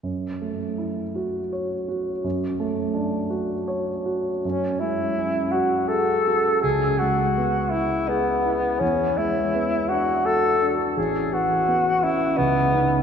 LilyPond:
<<
  \new Staff \with { instrumentName = "Alto saxophone" } { \time 3/4 \key fis \minor \tempo 4 = 83 r2. | r2. | cis'8 e'4 fis'8 a'4 | gis'8 fis'4 e'8 b4 |
cis'8 e'4 fis'8 a'8 r8 | gis'8 fis'4 e'8 b4 | }
  \new Staff \with { instrumentName = "Grand piano" } { \time 3/4 \key fis \minor fis,8 a8 e'8 fis'8 cis''8 fis'8 | fis,8 a8 d'8 fis'8 cis''8 fis'8 | fis,8 gis8 cis'8 fis'8 gis'8 fis'8 | cis,8 gis8 b8 e'8 gis'8 e'8 |
e,8 gis8 b8 d'8 fis'8 d'8 | a,,8 e8 b8 cis'8 cis,8 <cis' dis'>8 | }
>>